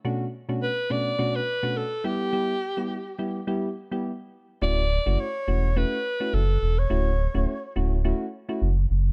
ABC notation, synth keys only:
X:1
M:4/4
L:1/16
Q:"Swing 16ths" 1/4=105
K:D
V:1 name="Synth keys"
[B,,A,CDF] z2 [B,,A,CDF] z2 [B,,A,CDF] z [B,,A,CDF] z2 [B,,A,CDF] z2 [G,B,EG]2 | [G,B,EG] z2 [G,B,EG] z2 [G,B,EG] z [G,B,EG] z2 [G,B,EG] z4 | [A,CEF] z2 [A,CEF] z2 [A,CEF] z [A,CEF] z2 [A,CEF] z4 | [A,CEF] z2 [A,CEF] z2 [A,CEF] z [A,CEF] z2 [A,CEF] z4 |]